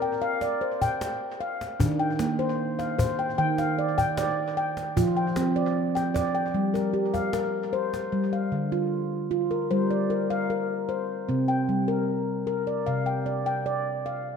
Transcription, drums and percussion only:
0.02 cajon slap
0.21 cajon slap
0.41 cajon slap
0.82 cajon bass
1.01 cajon slap
1.61 cajon slap
1.80 cajon bass
2.19 cajon slap
2.39 cajon slap
2.79 cajon slap
2.99 cajon bass
3.19 cajon slap
3.38 cajon slap
3.58 cajon slap
3.98 cajon bass
4.17 cajon slap
4.77 cajon slap
4.97 cajon bass
5.36 cajon slap
5.96 cajon slap
6.16 cajon bass, cajon slap
6.36 cajon slap
6.75 cajon slap
7.14 cajon bass, cajon slap
7.33 cajon slap
7.94 cajon slap

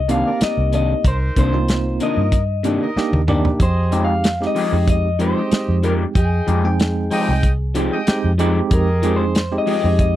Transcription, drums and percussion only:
0.09 closed hi-hat
0.41 snare, closed hi-hat
0.73 closed hi-hat
1.04 kick, closed hi-hat
1.36 kick, closed hi-hat
1.68 snare, closed hi-hat
2.00 closed hi-hat
2.32 kick, closed hi-hat
2.64 closed hi-hat
2.97 snare
3.13 high tom
3.28 mid tom
3.45 floor tom
3.60 kick, closed hi-hat
3.92 closed hi-hat
4.24 snare, closed hi-hat
4.42 snare
4.56 open hi-hat
4.88 kick, closed hi-hat
5.20 closed hi-hat
5.52 snare, closed hi-hat
5.83 closed hi-hat
6.15 kick, closed hi-hat
6.48 closed hi-hat
6.80 snare, closed hi-hat
7.11 open hi-hat
7.43 kick, closed hi-hat
7.75 closed hi-hat
8.07 snare, closed hi-hat
8.39 closed hi-hat
8.71 kick, closed hi-hat
9.03 closed hi-hat
9.35 snare, closed hi-hat
9.67 open hi-hat
9.99 kick, closed hi-hat

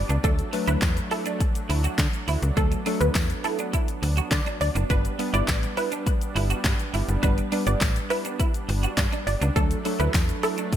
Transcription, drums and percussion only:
0.10 closed hi-hat, shaker
0.24 kick, closed hi-hat, shaker
0.39 closed hi-hat, shaker
0.53 open hi-hat, shaker
0.67 closed hi-hat, shaker
0.82 kick, snare, clap, closed hi-hat, tambourine, shaker
0.97 closed hi-hat, shaker
1.11 open hi-hat, shaker
1.26 closed hi-hat, shaker
1.40 kick, closed hi-hat, shaker
1.55 closed hi-hat, shaker
1.70 open hi-hat, shaker
1.84 closed hi-hat, shaker
1.98 kick, snare, clap, closed hi-hat, tambourine, shaker
2.13 closed hi-hat, shaker
2.28 open hi-hat, shaker
2.43 closed hi-hat, shaker
2.57 kick, closed hi-hat, shaker
2.72 closed hi-hat, shaker
2.86 open hi-hat, shaker
3.01 closed hi-hat, shaker
3.15 kick, snare, clap, closed hi-hat, tambourine, shaker
3.30 closed hi-hat, shaker
3.44 open hi-hat, shaker
3.59 closed hi-hat, shaker
3.73 kick, closed hi-hat, shaker
3.88 closed hi-hat, shaker
4.03 open hi-hat, shaker
4.17 closed hi-hat, shaker
4.31 kick, snare, clap, closed hi-hat, tambourine, shaker
4.46 closed hi-hat, shaker
4.61 open hi-hat, shaker
4.76 closed hi-hat, shaker
4.90 kick, closed hi-hat, shaker
5.05 closed hi-hat, shaker
5.19 open hi-hat, shaker
5.34 closed hi-hat, shaker
5.48 kick, snare, clap, closed hi-hat, tambourine, shaker
5.63 closed hi-hat, shaker
5.77 open hi-hat, shaker
5.92 closed hi-hat, shaker
6.07 kick, closed hi-hat, shaker
6.21 closed hi-hat, shaker
6.36 open hi-hat, shaker
6.50 closed hi-hat, shaker
6.64 kick, snare, clap, closed hi-hat, tambourine, shaker
6.79 closed hi-hat, shaker
6.94 open hi-hat, shaker
7.09 closed hi-hat, shaker
7.23 kick, closed hi-hat, shaker
7.38 closed hi-hat, shaker
7.52 open hi-hat, shaker
7.67 closed hi-hat, shaker
7.81 kick, snare, clap, closed hi-hat, tambourine, shaker
7.96 closed hi-hat, shaker
8.10 open hi-hat, shaker
8.25 closed hi-hat, shaker
8.40 kick, closed hi-hat, shaker
8.54 closed hi-hat, shaker
8.69 open hi-hat, shaker
8.83 closed hi-hat, shaker
8.97 kick, snare, clap, closed hi-hat, tambourine, shaker
9.13 closed hi-hat, shaker
9.27 open hi-hat, shaker
9.42 closed hi-hat, shaker
9.56 kick, closed hi-hat, shaker
9.71 closed hi-hat, shaker
9.85 open hi-hat, shaker
10.00 closed hi-hat, shaker
10.14 kick, snare, clap, closed hi-hat, tambourine, shaker
10.29 closed hi-hat, shaker
10.43 open hi-hat, shaker
10.58 closed hi-hat, shaker
10.73 kick, closed hi-hat, shaker

